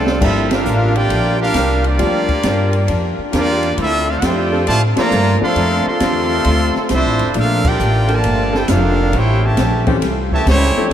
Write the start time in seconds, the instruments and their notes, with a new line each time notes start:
Already playing: upright bass C2, trombone section F3 A3 D4, trumpet section C4 F4 A4 D5
0.07 snare
0.20 upright bass G1, grand piano F3 G3 A#3 D4 G4, steel-string acoustic guitar G3 D4 F4 A#4, trumpet section C4 F4 A4 E5, trombone section E4, kick, crash
0.51 trombone section A#3 D4 F4, trumpet section D4 G4 A#4 F5, snare, ride
0.65 upright bass A1, steel-string acoustic guitar G3 D4 F4 A#4, hi-hat pedal
0.95 trombone section A#3 D4 G4, trumpet section F4 A#4 D5 G5, ride
1.09 upright bass A#1, steel-string acoustic guitar G3 D4 F4 A#4, ride
1.39 trombone section A#3 D4 F4, trumpet section D4 G4 A#4 F5
1.53 upright bass C2, saxophone section F3 A#3 D4 G4, steel-string acoustic guitar G3 D4 F4 A#4, snare, hi-hat pedal, ride
1.84 trombone section F3 A#3 D4, trumpet section A#3 F4 G4 D5, ride
1.98 upright bass D2, grand piano F3 G3 A#3 D4 G4, steel-string acoustic guitar G3 D4 F4 A#4, snare, ride
2.28 kick, ride
2.43 upright bass G2, steel-string acoustic guitar G3 D4 F4 A#4, snare, hi-hat pedal, ride
2.73 ride
2.87 upright bass F2, steel-string acoustic guitar G3 D4 F4 A#4, ride
3.18 muted upright bass stroke
3.31 upright bass E2, steel-string acoustic guitar G3 D4 F4 A#4, saxophone section A#3 D4 F4 G4, trombone section A#3 D4 F4, snare, hi-hat pedal, ride
3.35 trumpet section A#3 F4 G4 D5
3.63 ride
3.77 upright bass D2, steel-string acoustic guitar D3 A3 C4 F4, trumpet section C4 F4 A4 E5, trombone section E4, ride
4.09 trombone section A3 C4 F4, trumpet section D4 A4 C5 F5
4.19 upright bass F2, steel-string acoustic guitar D3, trumpet section F4 D5 F#5 G5, snare, hi-hat pedal, ride
4.23 steel-string acoustic guitar A3 C4 F4, trombone section A3 C4 G4, trumpet section C5
4.52 saxophone section F3 C4 D4 A4
4.67 upright bass A2, trombone section C3 F3 A3, steel-string acoustic guitar D3 A3 C4 F4, trumpet section F4 C5 D5 A5, ride
4.96 trombone section C3 F3 A#3, grand piano F3 A3 C4 D4 A4, trumpet section F4 C5 D5 A#5, muted upright bass stroke, snare, ride
5.11 upright bass G2, steel-string acoustic guitar D3 A3 C4 F4, hi-hat pedal
5.41 grand piano F3 A3 C4 D4 A4, trombone section F3 A3 C4, trumpet section A4 D5 F5 C6, muted upright bass stroke
5.55 upright bass F2, steel-string acoustic guitar D3 A3 C4 F4, saxophone section F3 C4 D4 A4, ride
5.86 trombone section A3 C4 F4, trumpet section A4 D5 F5 C6, muted upright bass stroke
6.00 upright bass E2, steel-string acoustic guitar D3 A3 C4 F4, saxophone section C4 D4 F4 G4, snare, hi-hat pedal, ride
6.44 upright bass D2, steel-string acoustic guitar D3 A3 C4 F4, ride
6.75 muted upright bass stroke, snare
6.89 upright bass C2, steel-string acoustic guitar D3 A3 C4 F4, trombone section A3 C4 E4, snare, hi-hat pedal, ride
6.93 trumpet section D4 A4 C5 E5
7.05 upright bass A1
7.19 upright bass F1, ride
7.34 upright bass A#1, steel-string acoustic guitar A#2 A3 D4 F4, grand piano F3 A3 A#3 D4 A4, trombone section A3 D4 F4, ride
7.39 trumpet section D4 A4 A#4 F5
7.64 trombone section A#3 D4 G4, trumpet section F4 A#4 D5 G5, kick, crash
7.79 upright bass A1, steel-string acoustic guitar A#2 A3 D4 F4, hi-hat pedal
8.08 trombone section D3 F3 A#3, saxophone section F3 A#3 D4 A4, ride
8.12 trumpet section F4 A#4 D5 A5
8.24 upright bass G1, steel-string acoustic guitar A#2 A3 D4 F4, ride
8.52 saxophone section F3 A#3 D4 A4, snare
8.56 trumpet section E4 A4 C5 G5, trombone section G4
8.68 upright bass F1, steel-string acoustic guitar A#2 A3 D4 F4, trombone section A#3 D4 F4, trumpet section D4 A4 A#4 F5, snare, hi-hat pedal, ride
9.13 upright bass A1, steel-string acoustic guitar A2 G3 C4 C#4, trombone section C#4 E4 G4, trumpet section E4 C5 C#5 G5, ride
9.45 trombone section C#3 E3 A3, trumpet section G4 C#5 E5 A5
9.57 upright bass A#1, steel-string acoustic guitar A2 G3 C4 C#4, snare, hi-hat pedal, ride
9.86 grand piano E3 A3 C4 C#4 G4, saxophone section G3 C4 C#4 A4, kick, ride
10.00 upright bass C2, steel-string acoustic guitar A2 G3 C4 C#4, snare, ride
10.32 trombone section C#3 E3 A3, trumpet section G4 C#5 E5 A5, kick
10.46 upright bass C#2, steel-string acoustic guitar A2 G3 C4 C#4, trombone section E3 G3 C#4, trumpet section E4 C5 C#5, snare, hi-hat pedal, ride
10.50 trumpet section G3
10.77 grand piano F3 A3 C4 D4 A4
10.90 saxophone section D4 A4